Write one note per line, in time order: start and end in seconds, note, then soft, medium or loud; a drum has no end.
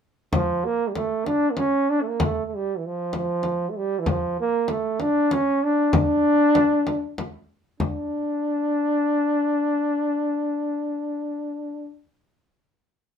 0.33 0.67 F3 medium
0.33 frame drum medium
0.65 0.89 A#3 medium
0.88 0.96 G3 medium
0.95 1.28 A3 medium
0.95 frame drum medium
1.26 1.52 D4 loud
1.26 frame drum medium
1.51 1.59 A#3 medium
1.57 1.91 C#4 medium
1.57 frame drum medium
1.90 2.03 D4 medium
2.01 2.09 A3 medium
2.07 2.24 A#3 medium
2.20 2.46 A3 medium
2.20 frame drum medium
2.46 2.57 A3 medium
2.55 2.79 G3 medium
2.77 2.87 E3 medium
2.86 3.15 F3 medium
3.13 3.71 F3 medium
3.13 frame drum medium
3.43 frame drum medium
3.70 3.78 A3 medium
3.77 4.01 G3 medium
4.00 4.09 E3 medium
4.06 4.38 F3 medium
4.06 frame drum medium
4.40 4.72 A#3 medium
4.68 5.02 A3 medium
4.68 frame drum medium
5.00 5.34 D4 medium
5.00 frame drum medium
5.31 5.65 C#4 medium
5.31 frame drum medium
5.63 5.94 D4 medium
5.93 7.14 D4 loud
5.93 frame drum medium
6.55 frame drum medium
6.87 frame drum medium
7.18 frame drum medium
7.80 11.95 D4 medium
7.80 frame drum medium